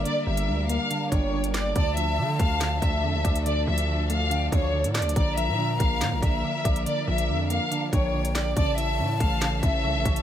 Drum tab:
HH |x--------x--------x-----x-----x--------x--x-----|x-----x-----------x-----x-----x-----------x--x--|x--------x--------x-----x-----x--------x--x-x-x-|x-----x-----------x-----x-----x-----------x--x--|
CP |------------------------------------------x-----|------------------------x-----------------------|------------------------------------------x-----|------------------------x-----------------------|
SD |------------------------------------------o-----|------------------------o-----------------------|------------------------------------------o-----|------------------------o-----------------------|
BD |------------------------------o-----------------|o-----------------o-----------o-----------o-----|------------------------------o-----------------|o-----------------o-----------o-----------o-----|

HH |x--------x--------x-----x-----x--------x--x-----|x-----x-----------x-----x-----x-----------x--x--|
CP |------------------------------------------x-----|------------------------x-----------------------|
SD |------------------------------------------o-----|------------------------o-----------------------|
BD |------------------------------o-----------------|o-----------------o-----------o-----------o-----|